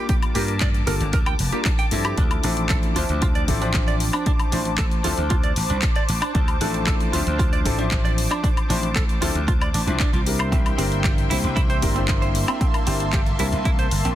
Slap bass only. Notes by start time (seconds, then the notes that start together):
0.35 G2
0.87 G1
1.01 G1
1.13 D2
1.40 F1
1.92 G2
2.18 D2
2.44 A1
2.96 D2
3.09 D2
3.48 A1
4.53 A1
5.05 D2
5.18 D2
5.57 A1
5.70 C2
6.09 A1
6.35 D2
6.61 A1
7.13 D2
7.27 D2
7.65 A1
8.70 A1
9.22 D2
9.35 D2
9.74 A1
9.87 C2
10.13 C2
10.52 C2
10.78 G1
11.31 C2
11.44 C2
11.83 G1
12.87 G1
13.39 C2
13.53 C2
13.92 G1
14.05 A#1